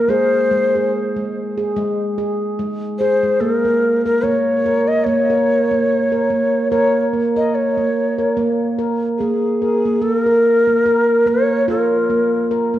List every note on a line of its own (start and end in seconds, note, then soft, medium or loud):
0.00 0.11 A#4 medium
0.08 0.50 G#3 medium
0.08 0.51 G#4 medium
0.08 0.92 C5 medium
0.51 0.74 G#3 medium
0.75 1.16 G#4 medium
1.16 1.57 G#3 medium
1.58 1.75 G#4 medium
1.76 2.17 G#3 medium
2.18 2.59 G#4 medium
2.59 3.00 G#3 medium
2.99 3.23 G#4 medium
2.99 3.42 C5 medium
3.23 3.41 G#3 medium
3.40 3.64 A#3 medium
3.40 3.52 A4 medium
3.52 4.05 A#4 medium
3.65 4.06 A#3 medium
4.06 4.24 A#4 medium
4.06 4.25 A#4 medium
4.24 4.65 A#3 medium
4.24 4.89 C#5 medium
4.66 5.07 A#4 medium
4.88 5.06 D#5 medium
5.04 5.29 A#3 medium
5.04 6.71 C#5 medium
5.30 5.71 A#4 medium
5.72 6.13 A#3 medium
6.12 6.30 A#4 medium
6.30 6.71 A#3 medium
6.71 7.12 A#3 medium
6.71 7.13 A#4 medium
6.71 7.05 C#5 medium
7.13 7.36 A#3 medium
7.36 7.78 A#4 medium
7.36 7.56 D#5 medium
7.55 8.37 C#5 medium
7.77 8.19 A#3 medium
8.18 8.37 A#4 medium
8.37 8.78 A#3 medium
8.78 9.20 A#4 medium
9.18 9.61 A#3 medium
9.18 10.04 G#4 medium
9.62 9.84 A#4 medium
9.85 10.00 A#3 medium
10.02 10.66 A#3 medium
10.02 10.19 A4 medium
10.19 11.29 A#4 medium
10.26 10.67 A#4 medium
10.67 10.85 A#3 medium
10.86 11.26 A#4 medium
11.26 11.67 A#3 medium
11.26 11.68 C#5 medium
11.68 12.09 F4 medium
11.68 12.47 A#4 medium
12.10 12.50 A#3 medium
12.51 12.73 A#4 medium
12.74 12.79 A#3 medium